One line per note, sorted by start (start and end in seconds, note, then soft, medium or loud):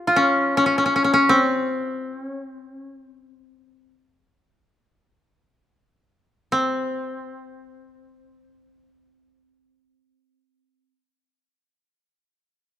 0.00 0.31 G4 medium
0.07 2.26 F4 medium
0.16 0.57 C#4 medium
0.57 0.66 C#4 medium
0.66 0.78 C#4 medium
0.78 0.85 C#4 medium
0.86 0.95 C#4 medium
0.96 1.04 C#4 medium
1.04 1.13 C#4 soft
1.14 1.35 C#4 medium
1.29 2.24 C4 medium
2.24 2.44 C#4 medium
2.44 2.76 C4 medium
2.76 2.96 C#4 medium
2.96 3.91 C4 medium
6.52 10.92 C4 medium